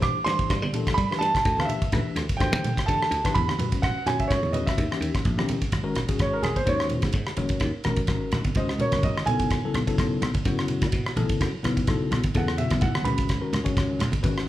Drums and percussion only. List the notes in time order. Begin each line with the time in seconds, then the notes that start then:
0.02 kick, cross-stick, ride, low conga
0.27 cross-stick, ride
0.39 kick, ride
0.50 kick, cross-stick, ride
0.63 high conga
0.73 ride, low conga
0.87 kick, cross-stick, ride
0.98 kick, ride
1.12 cross-stick
1.22 ride
1.35 kick, cross-stick, ride
1.45 kick, ride
1.57 cross-stick, high conga
1.69 ride, low conga
1.82 kick, ride
1.92 kick, cross-stick, ride, low conga
2.16 cross-stick, ride
2.29 kick, ride
2.40 kick, cross-stick, ride
2.52 high conga
2.64 ride, low conga
2.77 kick, cross-stick, ride
2.88 kick, ride
3.02 cross-stick
3.12 ride
3.25 kick, cross-stick, ride
3.35 kick, ride
3.48 cross-stick, high conga
3.59 ride, low conga
3.72 kick, ride
3.83 kick, cross-stick, ride, low conga
4.06 cross-stick, ride, low conga
4.19 kick, ride
4.31 kick, cross-stick, ride
4.43 high conga
4.53 ride, low conga
4.67 kick, cross-stick, ride
4.78 kick, ride
4.92 cross-stick
5.02 ride
5.14 kick, cross-stick, ride
5.25 kick, ride
5.38 cross-stick, high conga
5.49 ride, high conga, low conga
5.62 kick, ride
5.72 kick, cross-stick, ride
5.95 cross-stick, ride, low conga
6.09 kick, ride
6.19 kick, cross-stick, ride
6.43 cross-stick, ride, low conga
6.56 kick, ride, high conga
6.67 kick, ride
6.80 cross-stick
6.89 ride, low conga
7.02 kick, cross-stick, ride, high conga
7.12 kick, ride
7.27 cross-stick
7.37 ride, low conga
7.49 kick, ride
7.60 kick, cross-stick, ride
7.84 cross-stick, ride, low conga
7.96 kick, ride
8.07 kick, cross-stick, ride
8.32 cross-stick, ride, low conga
8.44 kick, ride, high conga
8.55 kick, ride
8.69 cross-stick
8.78 ride, low conga
8.92 kick, cross-stick, ride, high conga
9.03 kick, ride
9.18 cross-stick
9.26 ride, low conga
9.39 kick, ride
9.50 kick, cross-stick, ride
9.74 cross-stick, ride, low conga
9.87 kick, ride
9.98 kick, cross-stick, ride
10.22 cross-stick, ride, low conga
10.34 kick, ride, high conga
10.45 kick, ride
10.59 cross-stick
10.68 ride, low conga
10.82 kick, cross-stick, ride, high conga
10.92 kick, ride
11.06 cross-stick
11.16 ride, low conga
11.29 kick, ride
11.41 kick, cross-stick, ride
11.63 cross-stick, ride, low conga
11.77 kick, ride
11.87 kick, cross-stick, ride
12.11 cross-stick, ride, low conga
12.23 kick, ride, high conga
12.34 kick, ride, high conga
12.48 cross-stick
12.58 ride, low conga
12.70 kick, cross-stick, ride, high conga
12.81 kick, ride
12.95 cross-stick, high conga
13.05 ride, high conga, low conga
13.18 kick, ride
13.29 kick, cross-stick, ride
13.53 cross-stick, ride, low conga
13.66 kick, ride
13.77 kick, cross-stick, ride
13.99 cross-stick, ride, low conga
14.12 kick, ride, high conga
14.24 kick, ride
14.38 cross-stick